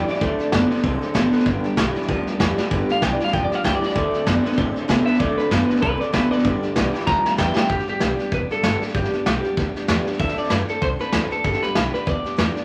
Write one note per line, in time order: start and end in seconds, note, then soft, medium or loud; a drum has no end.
0.00 0.10 D5 medium
0.07 0.20 G2 medium
0.07 0.20 E3 medium
0.07 0.21 G3 soft
0.07 0.21 B3 medium
0.07 0.21 D4 medium
0.07 0.21 G4 medium
0.07 muted upright bass stroke medium
0.07 snare soft
0.11 1.02 D5 loud
0.11 snare soft
0.20 0.34 D2 loud
0.20 0.39 D3 medium
0.20 0.50 D3 medium
0.20 0.39 F#3 medium
0.20 0.50 A3 loud
0.20 0.40 C4 medium
0.20 0.40 D4 medium
0.20 0.38 A4 medium
0.20 kick loud
0.20 snare soft
0.39 0.53 D4 medium
0.39 0.52 A4 medium
0.39 muted upright bass stroke medium
0.39 snare soft
0.43 0.53 C4 medium
0.52 0.66 F#2 medium
0.52 0.69 D3 medium
0.52 0.71 D3 medium
0.52 0.71 F#3 loud
0.52 0.69 B3 medium
0.52 0.71 C4 loud
0.52 0.71 D4 loud
0.52 0.69 A4 loud
0.52 kick medium
0.52 snare loud
0.52 hi-hat pedal medium
0.70 0.82 D3 medium
0.70 0.83 B3 medium
0.70 0.83 C4 medium
0.70 0.85 D4 medium
0.70 0.83 A4 medium
0.70 snare soft
0.77 snare soft
0.83 0.97 C2 loud
0.83 1.12 D3 medium
0.83 1.01 F#3 medium
0.83 1.13 C4 loud
0.83 1.02 C4 medium
0.83 1.02 D4 medium
0.83 1.00 A4 medium
0.83 kick loud
0.83 snare soft
1.01 1.14 C4 medium
1.01 1.15 D4 medium
1.01 1.15 A4 medium
1.01 muted upright bass stroke medium
1.01 snare soft
1.14 1.28 A1 medium
1.14 1.33 D3 loud
1.14 1.31 D3 loud
1.14 1.33 F#3 medium
1.14 1.31 B3 loud
1.14 1.33 C4 loud
1.14 1.33 D4 loud
1.14 1.31 A4 loud
1.14 kick medium
1.14 snare loud
1.14 hi-hat pedal loud
1.32 1.45 D3 medium
1.32 1.45 B3 loud
1.32 1.46 C4 medium
1.32 1.46 D4 medium
1.32 1.46 A4 medium
1.32 muted upright bass stroke medium
1.32 snare soft
1.39 snare soft
1.45 1.59 G1 loud
1.45 1.64 G2 medium
1.45 1.75 G2 medium
1.45 1.64 D3 loud
1.45 1.75 D3 medium
1.45 1.64 G3 medium
1.45 1.65 B3 medium
1.45 1.64 D4 loud
1.45 1.63 G4 loud
1.45 kick loud
1.45 snare soft
1.64 1.76 G3 medium
1.64 1.77 B3 medium
1.64 1.77 D4 medium
1.64 1.77 G4 medium
1.64 snare soft
1.76 1.91 B1 medium
1.76 1.95 G2 medium
1.76 1.94 G2 medium
1.76 1.95 D3 loud
1.76 1.94 E3 medium
1.76 1.96 G3 loud
1.76 1.96 B3 loud
1.76 1.95 D4 loud
1.76 1.93 G4 loud
1.76 kick medium
1.76 snare loud
1.76 hi-hat pedal medium
1.94 2.07 G2 medium
1.94 2.07 E3 medium
1.94 2.07 G3 medium
1.94 2.08 B3 medium
1.94 2.09 D4 medium
1.94 2.08 G4 medium
1.94 muted upright bass stroke medium
1.94 snare soft
2.02 snare soft
2.08 2.22 D2 loud
2.08 2.37 G2 medium
2.08 2.37 F3 medium
2.08 2.27 G3 medium
2.08 2.27 B3 medium
2.08 2.27 D4 medium
2.08 2.26 G4 medium
2.08 kick loud
2.08 snare soft
2.27 2.40 G3 soft
2.27 2.41 B3 medium
2.27 2.40 D4 medium
2.27 2.40 G4 medium
2.27 muted upright bass stroke medium
2.27 snare soft
2.39 2.53 E2 medium
2.39 2.56 G2 loud
2.39 2.58 G2 loud
2.39 2.58 D3 medium
2.39 2.56 E3 loud
2.39 2.58 G3 loud
2.39 2.59 B3 loud
2.39 2.58 D4 loud
2.39 2.56 G4 loud
2.39 kick loud
2.39 snare loud
2.39 hi-hat pedal loud
2.57 2.69 G2 medium
2.57 2.70 E3 medium
2.57 2.71 G3 soft
2.57 2.72 B3 medium
2.57 2.72 D4 medium
2.57 2.71 G4 medium
2.57 muted upright bass stroke medium
2.57 snare medium
2.70 2.84 G1 loud
2.70 2.99 G2 loud
2.70 2.89 G2 medium
2.70 2.99 D3 loud
2.70 2.89 D3 loud
2.70 2.90 G3 loud
2.70 2.90 B3 loud
2.70 2.90 D4 loud
2.70 2.88 G4 loud
2.70 kick loud
2.70 snare soft
2.89 3.02 B3 medium
2.89 3.03 D4 medium
2.89 3.02 G4 medium
2.89 3.03 F5 loud
2.89 muted upright bass stroke medium
2.89 snare soft
2.93 3.02 G3 medium
3.02 3.15 B1 medium
3.02 3.20 G2 medium
3.02 3.18 G2 medium
3.02 3.20 D3 medium
3.02 3.19 E3 medium
3.02 3.20 G3 medium
3.02 3.21 B3 medium
3.02 3.20 D4 medium
3.02 3.19 G4 medium
3.02 3.12 G5 medium
3.02 kick medium
3.02 snare loud
3.02 hi-hat pedal medium
3.13 3.23 D5 loud
3.20 3.31 G2 medium
3.20 3.32 E3 medium
3.20 3.31 G3 soft
3.20 3.32 B3 medium
3.20 3.34 D4 medium
3.20 3.33 G4 medium
3.20 snare soft
3.24 3.34 F5 loud
3.24 snare soft
3.32 3.46 E1 loud
3.32 3.61 G2 medium
3.32 3.62 F3 medium
3.32 3.51 G3 medium
3.32 3.51 B3 medium
3.32 3.51 D4 medium
3.32 3.49 G4 medium
3.32 3.44 G5 loud
3.32 kick loud
3.32 snare soft
3.44 3.55 D5 loud
3.50 3.63 G3 soft
3.50 3.64 B3 soft
3.50 3.64 D4 medium
3.50 3.64 G4 medium
3.50 muted upright bass stroke medium
3.50 snare soft
3.55 3.65 F5 medium
3.63 3.77 C#2 medium
3.63 3.82 G2 medium
3.63 3.80 G2 medium
3.63 3.82 D3 medium
3.63 3.81 E3 loud
3.63 3.83 G3 medium
3.63 3.83 B3 medium
3.63 3.82 D4 medium
3.63 3.81 G4 loud
3.63 3.75 G5 medium
3.63 kick medium
3.63 snare loud
3.63 hi-hat pedal loud
3.75 3.85 D5 medium
3.82 3.94 G2 medium
3.82 3.94 E3 medium
3.82 3.94 G3 soft
3.82 3.95 B3 medium
3.82 3.94 D4 medium
3.82 3.95 G4 medium
3.82 muted upright bass stroke medium
3.82 snare soft
3.86 4.77 D5 loud
3.86 snare soft
3.94 4.09 D2 loud
3.94 4.13 D3 medium
3.94 4.24 D3 loud
3.94 4.13 F#3 medium
3.94 4.24 A3 loud
3.94 4.13 C4 medium
3.94 4.13 D4 loud
3.94 4.11 A4 medium
3.94 kick loud
3.94 snare soft
4.12 4.26 C4 soft
4.12 4.27 D4 medium
4.12 4.26 A4 medium
4.12 muted upright bass stroke medium
4.12 snare soft
4.26 4.40 F#2 medium
4.26 4.43 D3 medium
4.26 4.45 D3 loud
4.26 4.45 F#3 loud
4.26 4.43 B3 medium
4.26 4.45 C4 loud
4.26 4.44 D4 loud
4.26 4.42 A4 loud
4.26 kick medium
4.26 snare loud
4.26 hi-hat pedal medium
4.44 4.56 D3 medium
4.44 4.57 B3 medium
4.44 4.56 C4 medium
4.44 4.57 D4 medium
4.44 4.57 A4 medium
4.44 muted upright bass stroke medium
4.44 snare soft
4.52 snare soft
4.56 4.71 A2 loud
4.56 4.86 D3 medium
4.56 4.75 F#3 medium
4.56 4.76 C4 medium
4.56 4.86 C4 loud
4.56 4.75 D4 medium
4.56 4.73 A4 loud
4.56 kick loud
4.56 snare soft
4.74 4.89 C4 soft
4.74 4.89 D4 medium
4.74 4.88 A4 medium
4.74 muted upright bass stroke medium
4.74 snare soft
4.88 5.02 C3 loud
4.88 5.07 D3 loud
4.88 5.05 D3 loud
4.88 5.07 F#3 loud
4.88 5.05 B3 loud
4.88 5.08 C4 loud
4.88 5.07 D4 loud
4.88 5.06 A4 loud
4.88 kick medium
4.88 snare loud
4.88 hi-hat pedal loud
5.06 5.18 D3 medium
5.06 5.19 B3 medium
5.06 5.19 D4 medium
5.06 5.20 A4 medium
5.06 5.19 E5 loud
5.06 muted upright bass stroke medium
5.06 snare soft
5.10 5.19 C4 soft
5.10 snare soft
5.19 5.33 D2 loud
5.19 5.38 D3 medium
5.19 5.48 D3 medium
5.19 5.38 F#3 medium
5.19 5.49 A3 loud
5.19 5.38 C4 medium
5.19 5.38 D4 medium
5.19 5.37 A4 loud
5.19 5.37 D5 medium
5.19 kick loud
5.19 snare soft
5.38 5.51 C4 medium
5.38 5.52 D4 medium
5.38 5.51 A4 medium
5.38 5.81 B4 loud
5.38 muted upright bass stroke medium
5.38 snare soft
5.50 5.65 F#2 loud
5.50 5.67 D3 medium
5.50 5.69 D3 medium
5.50 5.70 F#3 medium
5.50 5.67 B3 medium
5.50 5.70 C4 loud
5.50 5.69 D4 medium
5.50 5.67 A4 medium
5.50 kick medium
5.50 snare loud
5.50 hi-hat pedal medium
5.68 5.80 D3 medium
5.68 5.81 B3 medium
5.68 5.82 C4 soft
5.68 5.83 D4 medium
5.68 5.82 A4 soft
5.68 muted upright bass stroke medium
5.68 snare soft
5.76 snare soft
5.81 5.96 C2 loud
5.81 6.11 D3 medium
5.81 6.00 F#3 medium
5.81 6.11 C4 medium
5.81 6.01 C4 medium
5.81 6.00 D4 medium
5.81 5.98 A4 medium
5.81 6.00 B4 loud
5.81 kick loud
5.81 snare soft
6.00 6.13 C4 soft
6.00 6.13 D4 medium
6.00 6.13 A4 medium
6.00 6.13 D5 medium
6.00 muted upright bass stroke medium
6.00 snare soft
6.13 6.27 D2 loud
6.13 6.31 D3 medium
6.13 6.30 D3 medium
6.13 6.32 F#3 medium
6.13 6.30 B3 loud
6.13 6.32 C4 loud
6.13 6.32 D4 loud
6.13 6.30 A4 loud
6.13 6.31 B4 medium
6.13 kick medium
6.13 snare loud
6.13 hi-hat pedal medium
6.31 6.43 D3 medium
6.31 6.43 B3 loud
6.31 6.45 C4 soft
6.31 6.44 D4 medium
6.31 6.44 A4 medium
6.31 6.92 D5 loud
6.31 muted upright bass stroke medium
6.31 snare soft
6.38 snare soft
6.43 6.58 G1 loud
6.43 6.62 G2 medium
6.43 6.73 G2 loud
6.43 6.63 D3 medium
6.43 6.74 D3 loud
6.43 6.63 G3 medium
6.43 6.62 B3 medium
6.43 6.61 D4 loud
6.43 6.60 G4 loud
6.43 kick loud
6.43 snare soft
6.61 6.75 G3 soft
6.61 6.76 B3 medium
6.61 6.76 D4 medium
6.61 6.75 G4 medium
6.61 muted upright bass stroke medium
6.61 snare soft
6.75 6.89 B1 loud
6.75 6.94 G2 medium
6.75 6.92 G2 medium
6.75 6.94 D3 loud
6.75 6.92 E3 medium
6.75 6.94 G3 medium
6.75 6.94 B3 loud
6.75 6.93 D4 loud
6.75 6.92 G4 loud
6.75 kick medium
6.75 snare loud
6.75 hi-hat pedal medium
6.93 7.05 G2 medium
6.93 7.06 E3 loud
6.93 7.05 G3 medium
6.93 7.06 B3 medium
6.93 7.07 D4 medium
6.93 7.07 G4 medium
6.93 snare soft
7.01 snare soft
7.06 7.20 D2 medium
7.06 7.35 G2 medium
7.06 7.36 F3 medium
7.06 7.25 G3 medium
7.06 7.25 B3 medium
7.06 7.24 D4 medium
7.06 7.22 G4 medium
7.06 7.37 A#5 loud
7.06 kick loud
7.06 snare medium
7.23 7.37 G3 soft
7.23 7.38 B3 soft
7.23 7.38 D4 medium
7.23 7.37 G4 medium
7.23 muted upright bass stroke medium
7.23 snare medium
7.37 7.52 E2 loud
7.37 7.56 G2 medium
7.37 7.54 G2 medium
7.37 7.56 D3 medium
7.37 7.55 E3 loud
7.37 7.56 G3 medium
7.37 7.57 B3 medium
7.37 7.56 D4 loud
7.37 7.54 G4 loud
7.37 7.56 G5 medium
7.37 kick loud
7.37 snare loud
7.37 hi-hat pedal loud
7.56 7.68 G2 medium
7.56 7.68 E3 medium
7.56 7.68 G3 medium
7.56 7.68 B3 medium
7.56 7.69 D4 medium
7.56 7.69 G4 medium
7.56 7.69 G5 loud
7.56 muted upright bass stroke medium
7.56 snare loud
7.68 7.83 G1 medium
7.68 7.87 G2 medium
7.68 7.87 D3 medium
7.68 7.88 G3 medium
7.68 7.87 B3 medium
7.68 7.86 D4 medium
7.68 7.85 G4 medium
7.68 7.88 G4 medium
7.68 kick loud
7.68 snare soft
7.79 snare soft
7.86 8.00 G3 medium
7.86 8.00 B3 medium
7.86 8.00 D4 medium
7.86 8.00 G4 medium
7.86 8.34 G4 loud
7.86 muted upright bass stroke medium
7.86 snare soft
7.99 8.14 B1 medium
7.99 8.18 G2 medium
7.99 8.18 D3 medium
7.99 8.19 G3 medium
7.99 8.19 B3 medium
7.99 8.18 D4 medium
7.99 8.16 G4 medium
7.99 snare loud
7.99 hi-hat pedal medium
8.17 8.32 B3 soft
8.17 8.32 D4 medium
8.17 8.31 G4 medium
8.17 muted upright bass stroke medium
8.17 snare soft
8.21 8.30 G3 soft
8.32 8.45 E1 medium
8.32 8.50 G3 medium
8.32 8.51 B3 medium
8.32 8.50 D4 medium
8.32 8.48 G4 medium
8.32 8.39 B4 loud
8.32 kick loud
8.32 snare soft
8.50 8.63 G3 soft
8.50 8.63 B3 soft
8.50 8.64 D4 soft
8.50 8.63 G4 medium
8.50 8.82 A4 loud
8.50 muted upright bass stroke medium
8.50 snare soft
8.63 8.76 G1 medium
8.63 8.81 G2 medium
8.63 8.82 D3 medium
8.63 8.82 G3 medium
8.63 8.82 B3 medium
8.63 8.81 D4 loud
8.63 8.79 G4 loud
8.63 snare loud
8.63 hi-hat pedal loud
8.81 8.94 G3 soft
8.81 8.95 B3 soft
8.81 8.95 D4 medium
8.81 8.94 G4 medium
8.81 muted upright bass stroke medium
8.81 snare soft
8.88 snare soft
8.94 9.08 G1 loud
8.94 9.12 G2 medium
8.94 9.13 D3 medium
8.94 9.13 G3 medium
8.94 9.13 B3 medium
8.94 9.12 D4 medium
8.94 10.03 G4 loud
8.94 9.11 G4 medium
8.94 kick loud
8.94 snare soft
9.04 snare soft
9.12 9.26 G3 medium
9.12 9.26 B3 medium
9.12 9.26 D4 medium
9.12 9.26 G4 medium
9.12 muted upright bass stroke medium
9.12 snare soft
9.26 9.39 B1 medium
9.26 9.44 G2 medium
9.26 9.44 D3 medium
9.26 9.44 G3 medium
9.26 9.45 B3 medium
9.26 9.43 D4 medium
9.26 9.42 G4 medium
9.26 snare loud
9.26 hi-hat pedal medium
9.43 9.56 G3 medium
9.43 9.57 B3 medium
9.43 9.57 D4 medium
9.43 9.57 G4 medium
9.43 muted upright bass stroke medium
9.43 snare soft
9.57 9.70 D2 medium
9.57 9.75 G3 medium
9.57 9.76 B3 medium
9.57 9.75 D4 medium
9.57 9.73 G4 medium
9.57 kick loud
9.57 snare soft
9.74 9.88 G3 soft
9.74 9.88 B3 medium
9.74 9.89 D4 medium
9.74 9.88 G4 medium
9.74 muted upright bass stroke medium
9.74 snare soft
9.88 10.02 E2 loud
9.88 10.06 G2 loud
9.88 10.06 D3 medium
9.88 10.07 G3 loud
9.88 10.06 B3 loud
9.88 10.06 D4 loud
9.88 10.04 G4 loud
9.88 snare loud
9.88 hi-hat pedal medium
10.05 10.19 G3 medium
10.05 10.19 B3 medium
10.05 10.19 D4 medium
10.05 10.19 G4 medium
10.05 muted upright bass stroke medium
10.05 snare soft
10.12 snare soft
10.18 10.33 D2 loud
10.18 10.37 D3 medium
10.18 10.37 F#3 medium
10.18 10.38 C4 medium
10.18 10.38 D4 medium
10.18 10.36 A4 medium
10.18 10.38 E5 medium
10.18 kick loud
10.18 snare soft
10.28 snare soft
10.37 10.50 C4 soft
10.37 10.50 D4 medium
10.37 10.50 A4 medium
10.37 10.51 D5 medium
10.37 muted upright bass stroke medium
10.37 snare soft
10.44 snare soft
10.50 10.64 F#2 loud
10.50 10.68 D3 medium
10.50 10.69 F#3 medium
10.50 10.69 C4 medium
10.50 10.68 D4 medium
10.50 10.67 A4 medium
10.50 10.56 B4 loud
10.50 snare loud
10.50 hi-hat pedal medium
10.68 10.81 C4 soft
10.68 10.82 D4 medium
10.68 10.82 A4 soft
10.68 10.83 A4 loud
10.68 muted upright bass stroke medium
10.68 snare soft
10.81 10.95 C2 medium
10.81 11.00 F#3 medium
10.81 11.01 C4 medium
10.81 11.00 D4 medium
10.81 10.98 A4 medium
10.81 10.87 C5 loud
10.81 kick loud
10.81 snare soft
10.99 11.13 C4 soft
10.99 11.13 D4 soft
10.99 11.13 A4 medium
10.99 11.30 B4 loud
10.99 snare soft
11.12 11.27 D2 loud
11.12 11.31 D3 loud
11.12 11.31 F#3 medium
11.12 11.32 C4 medium
11.12 11.31 D4 loud
11.12 11.29 A4 medium
11.12 snare loud
11.12 hi-hat pedal loud
11.30 11.45 C4 medium
11.30 11.45 D4 medium
11.30 11.44 A4 medium
11.30 muted upright bass stroke medium
11.30 snare soft
11.44 11.58 G1 medium
11.44 11.62 G2 medium
11.44 11.63 D3 medium
11.44 11.63 G3 medium
11.44 11.63 B3 medium
11.44 11.62 D4 medium
11.44 11.61 G4 loud
11.44 11.64 A4 medium
11.44 kick loud
11.44 snare soft
11.53 snare soft
11.62 11.75 G3 medium
11.62 11.75 B3 medium
11.62 11.76 D4 medium
11.62 11.75 G4 medium
11.62 11.92 B4 loud
11.62 muted upright bass stroke medium
11.62 snare soft
11.75 11.89 B1 medium
11.75 11.94 G2 medium
11.75 11.94 D3 medium
11.75 11.94 G3 medium
11.75 11.94 B3 medium
11.75 11.93 D4 medium
11.75 11.91 G4 medium
11.75 snare loud
11.75 hi-hat pedal medium
11.93 12.05 G3 soft
11.93 12.06 B3 soft
11.93 12.07 D4 medium
11.93 12.06 G4 medium
11.93 12.07 B4 loud
11.93 snare soft
12.06 12.20 D2 medium
12.06 12.25 G3 medium
12.06 12.25 B3 medium
12.06 12.24 D4 medium
12.06 12.23 G4 medium
12.06 12.57 D5 loud
12.06 kick loud
12.06 snare soft
12.24 12.36 G3 soft
12.24 12.37 B3 soft
12.24 12.37 D4 medium
12.24 12.37 G4 medium
12.24 muted upright bass stroke medium
12.24 snare soft
12.37 12.52 E2 loud
12.37 12.56 G2 medium
12.37 12.56 D3 medium
12.37 12.56 G3 medium
12.37 12.56 B3 medium
12.37 12.55 D4 medium
12.37 12.54 G4 medium
12.37 snare loud
12.37 hi-hat pedal medium
12.55 12.65 G3 medium
12.55 12.65 B3 medium
12.55 12.65 D4 medium
12.55 12.65 G4 medium
12.55 muted upright bass stroke medium
12.55 snare soft